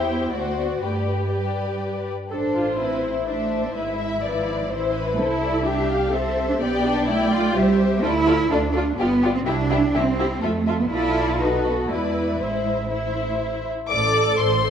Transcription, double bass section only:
0, 0, Header, 1, 2, 480
1, 0, Start_track
1, 0, Key_signature, 0, "minor"
1, 0, Tempo, 492207
1, 804, Time_signature, 3, 2, 24, 8
1, 2726, Tempo, 477707
1, 10406, Tempo, 492611
1, 14558, End_track
2, 0, Start_track
2, 0, Title_t, "Double bass section"
2, 0, Program_c, 0, 48
2, 0, Note_on_c, 0, 40, 60
2, 284, Note_off_c, 0, 40, 0
2, 320, Note_on_c, 0, 38, 51
2, 803, Note_off_c, 0, 38, 0
2, 805, Note_on_c, 0, 43, 46
2, 2032, Note_off_c, 0, 43, 0
2, 2265, Note_on_c, 0, 33, 53
2, 3649, Note_off_c, 0, 33, 0
2, 3692, Note_on_c, 0, 32, 56
2, 4625, Note_off_c, 0, 32, 0
2, 4642, Note_on_c, 0, 33, 54
2, 5123, Note_off_c, 0, 33, 0
2, 5126, Note_on_c, 0, 36, 61
2, 6554, Note_off_c, 0, 36, 0
2, 6561, Note_on_c, 0, 35, 71
2, 7497, Note_off_c, 0, 35, 0
2, 7509, Note_on_c, 0, 36, 71
2, 7990, Note_off_c, 0, 36, 0
2, 7995, Note_on_c, 0, 38, 85
2, 8415, Note_off_c, 0, 38, 0
2, 8477, Note_on_c, 0, 38, 79
2, 8898, Note_off_c, 0, 38, 0
2, 8944, Note_on_c, 0, 31, 73
2, 9374, Note_off_c, 0, 31, 0
2, 9435, Note_on_c, 0, 36, 87
2, 9862, Note_off_c, 0, 36, 0
2, 9912, Note_on_c, 0, 36, 74
2, 10344, Note_off_c, 0, 36, 0
2, 10403, Note_on_c, 0, 41, 69
2, 10821, Note_off_c, 0, 41, 0
2, 10879, Note_on_c, 0, 35, 68
2, 11791, Note_off_c, 0, 35, 0
2, 11831, Note_on_c, 0, 40, 56
2, 12316, Note_off_c, 0, 40, 0
2, 12317, Note_on_c, 0, 33, 52
2, 13577, Note_off_c, 0, 33, 0
2, 13789, Note_on_c, 0, 33, 77
2, 14202, Note_off_c, 0, 33, 0
2, 14259, Note_on_c, 0, 33, 76
2, 14558, Note_off_c, 0, 33, 0
2, 14558, End_track
0, 0, End_of_file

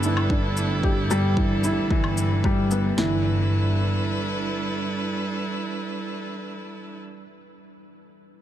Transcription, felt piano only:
0, 0, Header, 1, 2, 480
1, 0, Start_track
1, 0, Key_signature, 1, "major"
1, 0, Tempo, 535714
1, 751, Time_signature, 4, 2, 24, 8
1, 7543, End_track
2, 0, Start_track
2, 0, Title_t, "Felt piano"
2, 0, Program_c, 0, 0
2, 0, Control_c, 0, 64, 127
2, 0, Note_on_c, 0, 52, 102
2, 0, Note_on_c, 0, 55, 109
2, 0, Note_on_c, 0, 59, 82
2, 0, Note_on_c, 0, 62, 88
2, 34, Note_on_c, 0, 64, 74
2, 260, Note_off_c, 0, 64, 0
2, 272, Note_off_c, 0, 62, 0
2, 272, Note_on_c, 0, 62, 77
2, 499, Note_off_c, 0, 62, 0
2, 750, Note_on_c, 0, 67, 83
2, 887, Note_off_c, 0, 67, 0
2, 992, Note_off_c, 0, 55, 0
2, 992, Note_on_c, 0, 55, 102
2, 1219, Note_off_c, 0, 55, 0
2, 1232, Note_off_c, 0, 52, 0
2, 1232, Note_on_c, 0, 52, 76
2, 1459, Note_off_c, 0, 52, 0
2, 1472, Note_on_c, 0, 64, 81
2, 1699, Note_off_c, 0, 64, 0
2, 1710, Note_on_c, 0, 52, 106
2, 1938, Note_off_c, 0, 52, 0
2, 2194, Note_on_c, 0, 55, 95
2, 2420, Note_off_c, 0, 55, 0
2, 2430, Note_off_c, 0, 59, 0
2, 2430, Note_on_c, 0, 59, 77
2, 2658, Note_off_c, 0, 59, 0
2, 2670, Note_on_c, 0, 52, 97
2, 2684, Control_c, 0, 64, 0
2, 2846, Control_c, 0, 64, 127
2, 2894, Note_off_c, 0, 52, 0
2, 7543, End_track
0, 0, End_of_file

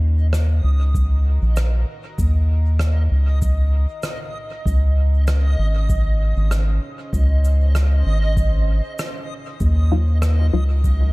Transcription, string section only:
0, 0, Header, 1, 2, 480
1, 0, Start_track
1, 0, Tempo, 618557
1, 1695, Time_signature, 4, 2, 24, 8
1, 8635, End_track
2, 0, Start_track
2, 0, Title_t, "String section"
2, 0, Program_c, 0, 48
2, 0, Note_on_c, 0, 51, 72
2, 0, Note_on_c, 0, 61, 72
2, 0, Note_on_c, 0, 63, 73
2, 0, Note_on_c, 0, 66, 81
2, 0, Note_on_c, 0, 72, 71
2, 0, Note_on_c, 0, 77, 69
2, 153, Note_on_c, 0, 70, 83
2, 986, Note_off_c, 0, 61, 0
2, 1313, Note_off_c, 0, 72, 0
2, 3616, Note_off_c, 0, 51, 0
2, 3616, Note_off_c, 0, 66, 0
2, 3616, Note_on_c, 0, 49, 73
2, 3861, Note_on_c, 0, 61, 73
2, 4693, Note_off_c, 0, 70, 0
2, 4786, Note_on_c, 0, 72, 73
2, 7455, Note_off_c, 0, 49, 0
2, 7455, Note_off_c, 0, 63, 0
2, 7455, Note_off_c, 0, 77, 0
2, 7456, Note_on_c, 0, 51, 74
2, 7518, Note_on_c, 0, 63, 85
2, 7602, Note_on_c, 0, 66, 73
2, 7968, Note_on_c, 0, 77, 79
2, 8206, Note_off_c, 0, 72, 0
2, 8291, Note_on_c, 0, 70, 78
2, 8318, Note_off_c, 0, 61, 0
2, 8635, Note_off_c, 0, 51, 0
2, 8635, Note_off_c, 0, 63, 0
2, 8635, Note_off_c, 0, 66, 0
2, 8635, Note_off_c, 0, 70, 0
2, 8635, Note_off_c, 0, 77, 0
2, 8635, End_track
0, 0, End_of_file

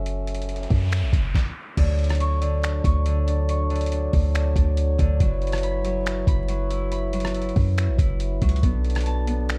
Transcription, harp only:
0, 0, Header, 1, 2, 480
1, 0, Start_track
1, 0, Tempo, 428571
1, 67, Time_signature, 4, 2, 24, 8
1, 10733, End_track
2, 0, Start_track
2, 0, Title_t, "Harp"
2, 0, Program_c, 0, 46
2, 1986, Note_on_c, 0, 50, 86
2, 2467, Note_on_c, 0, 85, 90
2, 2690, Note_off_c, 0, 50, 0
2, 2703, Note_on_c, 0, 50, 89
2, 3183, Note_off_c, 0, 85, 0
2, 3187, Note_on_c, 0, 85, 88
2, 3412, Note_off_c, 0, 50, 0
2, 3425, Note_on_c, 0, 50, 92
2, 3662, Note_on_c, 0, 62, 86
2, 3901, Note_off_c, 0, 85, 0
2, 3905, Note_on_c, 0, 85, 83
2, 4134, Note_off_c, 0, 50, 0
2, 4148, Note_on_c, 0, 50, 87
2, 4383, Note_off_c, 0, 62, 0
2, 4388, Note_on_c, 0, 62, 79
2, 5103, Note_off_c, 0, 62, 0
2, 5108, Note_on_c, 0, 62, 77
2, 5346, Note_off_c, 0, 85, 0
2, 5568, Note_off_c, 0, 50, 0
2, 5582, Note_on_c, 0, 50, 99
2, 5833, Note_on_c, 0, 54, 86
2, 5883, Note_off_c, 0, 50, 0
2, 6306, Note_on_c, 0, 83, 90
2, 6535, Note_off_c, 0, 54, 0
2, 6548, Note_on_c, 0, 54, 85
2, 7021, Note_off_c, 0, 83, 0
2, 7026, Note_on_c, 0, 83, 91
2, 7250, Note_off_c, 0, 54, 0
2, 7264, Note_on_c, 0, 54, 87
2, 7511, Note_on_c, 0, 64, 83
2, 7740, Note_off_c, 0, 83, 0
2, 7745, Note_on_c, 0, 83, 89
2, 7975, Note_off_c, 0, 54, 0
2, 7988, Note_on_c, 0, 54, 86
2, 8219, Note_off_c, 0, 64, 0
2, 8223, Note_on_c, 0, 64, 76
2, 8243, Note_off_c, 0, 62, 0
2, 8939, Note_off_c, 0, 64, 0
2, 8943, Note_on_c, 0, 64, 81
2, 9259, Note_off_c, 0, 83, 0
2, 9414, Note_off_c, 0, 54, 0
2, 9428, Note_on_c, 0, 54, 88
2, 9670, Note_on_c, 0, 59, 90
2, 9723, Note_off_c, 0, 54, 0
2, 10150, Note_on_c, 0, 81, 90
2, 10382, Note_off_c, 0, 59, 0
2, 10386, Note_on_c, 0, 59, 83
2, 10733, Note_off_c, 0, 59, 0
2, 10733, Note_off_c, 0, 64, 0
2, 10733, Note_off_c, 0, 81, 0
2, 10733, End_track
0, 0, End_of_file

